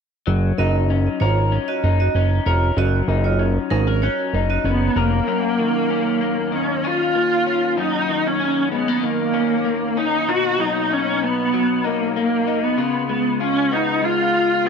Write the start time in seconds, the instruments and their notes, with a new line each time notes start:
0.27 analog synth bass F#1, clean electric guitar F#3
0.58 analog synth bass F#1, clean electric guitar D#4, vibraphone F#4 D#5
0.90 clean electric guitar C#4
1.20 analog synth bass G#1, vibraphone F4 C#5, clean electric guitar A#4
1.52 clean electric guitar C#4
1.68 vibraphone F#4 D#5
1.84 analog synth bass F#1, clean electric guitar D#4
2.00 vibraphone F#4 D#5
2.15 analog synth bass F#1, clean electric guitar C#4
2.46 analog synth bass F1, vibraphone F4 C#5, clean electric guitar A#4
2.77 analog synth bass F#1, clean electric guitar F#3, vibraphone F#4 D#5
3.08 analog synth bass F#1, clean electric guitar D#4
3.24 vibraphone F4 C#5
3.39 clean electric guitar C#4
3.70 analog synth bass G#1, vibraphone C#4 A#4, clean electric guitar G#4
3.87 clean electric guitar A#4
4.02 clean electric guitar C#4, vibraphone F#4 C#5
4.33 analog synth bass F#1, clean electric guitar D#4
4.50 vibraphone F#4 D#5
4.64 analog synth bass F#1, viola B3, clean electric guitar C#4
4.96 analog synth bass F1, viola A#3, clean electric guitar A#4
5.27 clean electric guitar F#2 C#4
5.59 clean electric guitar D#3
5.90 clean electric guitar C#4
6.21 clean electric guitar A#3
6.52 clean electric guitar D#3, viola C#4
6.84 clean electric guitar C#4, viola F4
7.15 clean electric guitar A#3
7.46 clean electric guitar C#4
7.77 clean electric guitar F#2 C#4, viola D#4
8.08 clean electric guitar D#3
8.27 viola C#4
8.40 clean electric guitar C#4
8.72 clean electric guitar G#3, viola B3
8.88 clean electric guitar A#3
9.03 clean electric guitar D#3, viola A#3
9.34 clean electric guitar C#4
9.65 clean electric guitar A#3
9.97 clean electric guitar C#4, viola D#4
10.28 clean electric guitar B2 D#4, viola F#4
10.59 clean electric guitar F#3, viola D#4
10.90 viola C#4, clean electric guitar D#4
11.23 viola B3
11.53 clean electric guitar F#3
11.84 viola A#3, clean electric guitar D#4
12.16 viola A#3, clean electric guitar A#3
12.47 clean electric guitar D#4
12.63 viola B3
12.77 clean electric guitar C#3 F4
13.09 clean electric guitar G#3, viola B3
13.40 viola C#4, clean electric guitar F4
13.71 clean electric guitar B3, viola D#4
14.02 clean electric guitar G#3, viola F4
14.33 clean electric guitar F4
14.65 clean electric guitar B3, viola G#4